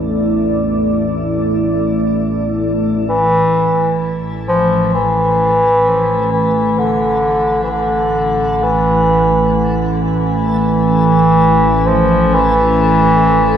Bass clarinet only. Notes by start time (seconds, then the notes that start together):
3.09 E3
4.48 F3
4.94 E3
6.32 E3
6.78 D3
7.63 E3
7.71 D3
8.63 E3
10.49 E3
11.87 F3
12.34 E3